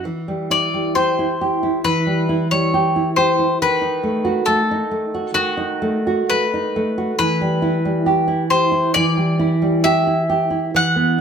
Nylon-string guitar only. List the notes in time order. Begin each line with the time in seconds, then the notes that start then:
0.05 E3
0.28 G3
0.50 E4
0.74 G3
0.96 G4
1.19 E4
1.41 G4
1.63 E4
1.84 E3
2.07 G3
2.29 E4
2.52 G3
2.74 G4
2.96 E4
3.18 G4
3.39 E4
3.62 D#3
3.81 D#4
4.03 A3
4.25 F#4
4.47 A3
4.71 D#4
4.91 A3
5.14 F#4
5.35 D#3
5.57 D#4
5.82 A3
6.07 F#4
6.31 A3
6.54 D#4
6.76 A3
6.98 F#4
7.19 E3
7.41 G3
7.62 E4
7.85 G3
8.06 G4
8.28 E4
8.50 G4
8.72 E4
8.96 E3
9.17 G3
9.39 E4
9.62 G3
9.85 G4
10.07 E4
10.30 G4
10.50 E4
10.74 E3
10.96 B3